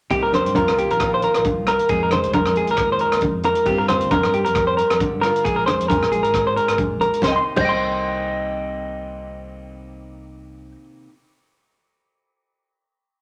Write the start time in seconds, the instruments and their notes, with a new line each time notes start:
0.10 fingered electric bass C2, steel-string acoustic guitar C3 A#3 D#4 G4, clean electric guitar G4, kick, closed hi-hat, muted conga
0.23 clean electric guitar A#4
0.33 steel-string acoustic guitar A#3, clean electric guitar C5, cross-stick, closed hi-hat, muted conga, high conga
0.46 fingered electric bass G2, closed hi-hat
0.55 steel-string acoustic guitar F4, clean electric guitar A#4, kick, closed hi-hat, high conga
0.68 fingered electric bass C2, cross-stick
0.78 steel-string acoustic guitar D#3 A#3, clean electric guitar G4, closed hi-hat
0.90 fingered electric bass A#1, clean electric guitar A#4, closed hi-hat
1.00 steel-string acoustic guitar F4, kick, cross-stick, closed hi-hat, muted conga
1.14 clean electric guitar C5
1.22 steel-string acoustic guitar D#4, clean electric guitar A#4, closed hi-hat
1.34 fingered electric bass A#1, cross-stick, closed hi-hat
1.45 steel-string acoustic guitar G2, kick, closed hi-hat, high conga
1.60 fingered electric bass C2
1.67 steel-string acoustic guitar G4, clean electric guitar A#4, cross-stick, closed hi-hat, muted conga
1.79 closed hi-hat
1.89 fingered electric bass F2, steel-string acoustic guitar F2 G#3 D#4 G#4, clean electric guitar G#4, kick, closed hi-hat, muted conga
2.03 clean electric guitar A#4
2.11 steel-string acoustic guitar G#3, clean electric guitar C5, cross-stick, closed hi-hat, muted conga, high conga
2.23 fingered electric bass C2, closed hi-hat
2.33 steel-string acoustic guitar A#4, clean electric guitar A#4, kick, closed hi-hat, high conga
2.46 fingered electric bass F2, cross-stick
2.55 steel-string acoustic guitar F3 G#3, clean electric guitar G#4, closed hi-hat
2.67 fingered electric bass D#2, clean electric guitar A#4, closed hi-hat
2.77 kick, cross-stick, closed hi-hat, muted conga
2.92 clean electric guitar C5
2.99 steel-string acoustic guitar D#4, clean electric guitar A#4, closed hi-hat
3.12 fingered electric bass D#2, cross-stick, closed hi-hat
3.21 kick, closed hi-hat, high conga
3.34 fingered electric bass F2
3.43 steel-string acoustic guitar F2, clean electric guitar A#4, closed hi-hat, muted conga
3.55 closed hi-hat
3.65 fingered electric bass G2, steel-string acoustic guitar G2 C4 D4 F4, clean electric guitar G4, kick, closed hi-hat, muted conga
3.78 clean electric guitar A#4
3.88 steel-string acoustic guitar C4, clean electric guitar C5, cross-stick, closed hi-hat, muted conga, high conga
4.01 fingered electric bass D2, closed hi-hat
4.11 steel-string acoustic guitar G4, clean electric guitar A#4, kick, closed hi-hat, high conga
4.23 fingered electric bass G2, cross-stick
4.33 steel-string acoustic guitar G3, clean electric guitar G4, closed hi-hat
4.45 fingered electric bass F2, clean electric guitar A#4, closed hi-hat
4.55 steel-string acoustic guitar G4, kick, cross-stick, closed hi-hat, muted conga
4.67 clean electric guitar C5
4.77 steel-string acoustic guitar D4, clean electric guitar A#4, closed hi-hat
4.90 fingered electric bass F2, cross-stick, closed hi-hat
5.00 steel-string acoustic guitar D3, kick, closed hi-hat, high conga
5.13 fingered electric bass G2
5.21 steel-string acoustic guitar F4, clean electric guitar A#4, cross-stick, closed hi-hat, muted conga
5.36 closed hi-hat
5.45 fingered electric bass A#1, steel-string acoustic guitar A#2 G#3 D4 G#4, clean electric guitar G#4, kick, closed hi-hat, muted conga
5.56 clean electric guitar A#4
5.66 steel-string acoustic guitar G#3, clean electric guitar C5, cross-stick, closed hi-hat, muted conga, high conga
5.79 fingered electric bass F2, closed hi-hat
5.88 steel-string acoustic guitar G#4, clean electric guitar A#4, kick, closed hi-hat, high conga
6.02 fingered electric bass A#1, cross-stick
6.12 steel-string acoustic guitar G#3, clean electric guitar G#4, closed hi-hat
6.23 fingered electric bass G#1, clean electric guitar A#4, closed hi-hat
6.34 steel-string acoustic guitar G#4, kick, cross-stick, closed hi-hat, muted conga
6.47 clean electric guitar C5
6.56 steel-string acoustic guitar D4, clean electric guitar A#4, closed hi-hat
6.68 fingered electric bass G#1, cross-stick, closed hi-hat
6.78 steel-string acoustic guitar F2, kick, closed hi-hat, high conga
6.91 fingered electric bass A#1
7.01 clean electric guitar A#4, steel-string acoustic guitar A#4, closed hi-hat, muted conga
7.13 closed hi-hat
7.21 fingered electric bass C2, steel-string acoustic guitar C3 D#3, clean electric guitar C5, kick, snare, muted conga
7.25 steel-string acoustic guitar A#3 D#4 G4, clean electric guitar D#5
7.32 clean electric guitar G5 C6
7.56 fingered electric bass C2, steel-string acoustic guitar C3 D#3, clean electric guitar C5, kick, crash, muted conga
7.61 steel-string acoustic guitar A#3 D#4, clean electric guitar D#5
7.65 steel-string acoustic guitar G4, clean electric guitar G5 C6